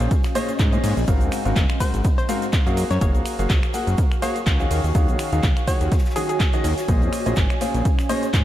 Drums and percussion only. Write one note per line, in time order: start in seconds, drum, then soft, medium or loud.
0.00 closed hi-hat soft
0.00 closed hi-hat medium
0.00 cabasa soft
0.11 kick loud
0.11 closed hi-hat medium
0.11 ride medium
0.11 cabasa soft
0.11 shaker medium
0.24 finger snap medium
0.24 snare loud
0.24 cabasa soft
0.24 shaker medium
0.35 closed hi-hat soft
0.35 open hi-hat loud
0.35 ride medium
0.35 cabasa medium
0.48 closed hi-hat medium
0.48 cabasa soft
0.48 shaker medium
0.59 kick loud
0.59 snare loud
0.59 clap loud
0.59 closed hi-hat medium
0.59 ride medium
0.59 cabasa soft
0.59 shaker medium
0.73 closed hi-hat soft
0.73 cabasa soft
0.84 open hi-hat medium
0.84 ride medium
0.84 cabasa medium
0.97 closed hi-hat medium
0.97 cabasa soft
1.08 kick loud
1.08 closed hi-hat medium
1.08 ride medium
1.08 cabasa soft
1.08 shaker loud
1.21 closed hi-hat soft
1.21 cabasa soft
1.32 finger snap medium
1.32 open hi-hat loud
1.32 ride medium
1.32 cabasa medium
1.32 shaker medium
1.45 closed hi-hat medium
1.45 cabasa soft
1.56 kick loud
1.56 snare loud
1.56 clap loud
1.56 closed hi-hat medium
1.56 ride medium
1.56 cabasa soft
1.56 shaker medium
1.70 finger snap medium
1.70 closed hi-hat soft
1.70 cabasa soft
1.80 kick medium
1.80 open hi-hat medium
1.80 ride medium
1.80 cabasa medium
1.80 shaker medium
1.94 closed hi-hat medium
1.94 closed hi-hat soft
1.94 cabasa soft
2.04 kick loud
2.04 closed hi-hat medium
2.04 ride medium
2.04 cabasa soft
2.04 shaker medium
2.19 closed hi-hat soft
2.19 cabasa soft
2.28 open hi-hat loud
2.28 ride medium
2.28 cabasa medium
2.28 shaker medium
2.42 closed hi-hat medium
2.42 closed hi-hat soft
2.42 cabasa soft
2.53 kick loud
2.53 snare loud
2.53 clap loud
2.53 closed hi-hat medium
2.53 ride medium
2.53 cabasa soft
2.53 shaker medium
2.67 closed hi-hat soft
2.67 cabasa soft
2.77 open hi-hat medium
2.77 ride medium
2.77 cabasa medium
2.77 shaker medium
2.91 snare soft
2.91 closed hi-hat medium
2.91 cabasa soft
3.01 kick loud
3.01 closed hi-hat medium
3.01 ride medium
3.01 cabasa soft
3.01 shaker loud
3.15 closed hi-hat soft
3.15 cabasa soft
3.25 finger snap medium
3.25 open hi-hat loud
3.25 ride medium
3.25 cabasa medium
3.25 shaker medium
3.39 closed hi-hat medium
3.39 closed hi-hat soft
3.39 cabasa soft
3.50 kick loud
3.50 snare loud
3.50 clap loud
3.50 closed hi-hat medium
3.50 ride medium
3.50 cabasa soft
3.50 shaker medium
3.63 finger snap medium
3.63 closed hi-hat soft
3.63 cabasa soft
3.74 open hi-hat medium
3.74 ride medium
3.74 cabasa medium
3.74 shaker medium
3.87 closed hi-hat medium
3.87 cabasa soft
3.98 kick loud
3.98 closed hi-hat medium
3.98 ride medium
3.98 cabasa soft
3.98 shaker medium
4.12 finger snap medium
4.12 cabasa soft
4.22 open hi-hat loud
4.22 ride medium
4.22 cabasa medium
4.22 shaker medium
4.36 closed hi-hat medium
4.36 cabasa soft
4.46 kick loud
4.46 snare loud
4.46 clap loud
4.46 closed hi-hat medium
4.46 ride medium
4.46 cabasa soft
4.46 shaker medium
4.59 closed hi-hat soft
4.59 cabasa soft
4.71 open hi-hat medium
4.71 ride medium
4.71 cabasa medium
4.84 closed hi-hat medium
4.84 cabasa soft
4.95 kick loud
4.95 closed hi-hat medium
4.95 ride medium
4.95 cabasa soft
4.95 shaker medium
5.08 closed hi-hat soft
5.08 cabasa soft
5.19 finger snap medium
5.19 open hi-hat loud
5.19 ride medium
5.19 cabasa medium
5.19 shaker medium
5.33 closed hi-hat medium
5.33 cabasa soft
5.43 kick loud
5.43 snare loud
5.43 clap loud
5.43 closed hi-hat medium
5.43 ride medium
5.43 cabasa soft
5.43 shaker loud
5.57 finger snap medium
5.57 closed hi-hat soft
5.57 cabasa soft
5.67 kick medium
5.67 open hi-hat medium
5.67 ride medium
5.67 cabasa medium
5.67 shaker medium
5.81 closed hi-hat soft
5.81 closed hi-hat medium
5.81 cabasa soft
5.91 kick loud
5.91 snare medium
5.91 closed hi-hat medium
5.91 ride medium
5.91 cabasa soft
5.91 shaker medium
5.98 snare loud
5.98 shaker medium
6.05 snare medium
6.05 cabasa soft
6.05 shaker medium
6.10 snare medium
6.10 shaker medium
6.16 open hi-hat loud
6.16 ride medium
6.16 cabasa medium
6.16 shaker medium
6.29 closed hi-hat soft
6.29 closed hi-hat medium
6.29 cabasa soft
6.39 kick loud
6.39 snare medium
6.39 clap loud
6.39 closed hi-hat medium
6.39 ride medium
6.39 cabasa soft
6.39 shaker medium
6.53 closed hi-hat soft
6.53 cabasa soft
6.64 open hi-hat medium
6.64 ride medium
6.64 cabasa medium
6.78 snare loud
6.78 closed hi-hat medium
6.78 cabasa soft
6.78 shaker medium
6.88 kick loud
6.88 closed hi-hat medium
6.88 ride medium
6.88 cabasa soft
6.88 shaker loud
7.02 closed hi-hat soft
7.02 cabasa soft
7.13 finger snap medium
7.13 open hi-hat loud
7.13 ride medium
7.13 cabasa medium
7.13 shaker medium
7.26 closed hi-hat medium
7.26 closed hi-hat soft
7.26 cabasa soft
7.36 kick loud
7.36 snare loud
7.36 clap loud
7.36 closed hi-hat medium
7.36 ride medium
7.36 cabasa soft
7.36 shaker medium
7.50 finger snap medium
7.50 closed hi-hat soft
7.50 cabasa soft
7.61 snare loud
7.61 open hi-hat medium
7.61 ride medium
7.61 cabasa medium
7.61 shaker medium
7.74 closed hi-hat medium
7.74 closed hi-hat soft
7.74 cabasa soft
7.85 kick loud
7.85 closed hi-hat medium
7.85 ride medium
7.85 cabasa soft
7.85 shaker medium
7.99 finger snap medium
7.99 snare loud
7.99 cabasa soft
7.99 shaker medium
8.09 closed hi-hat soft
8.09 open hi-hat loud
8.09 ride medium
8.09 cabasa medium
8.23 closed hi-hat medium
8.23 cabasa soft
8.23 shaker medium
8.34 kick loud
8.34 snare loud
8.34 clap loud
8.34 closed hi-hat medium
8.34 ride medium
8.34 cabasa soft
8.34 shaker medium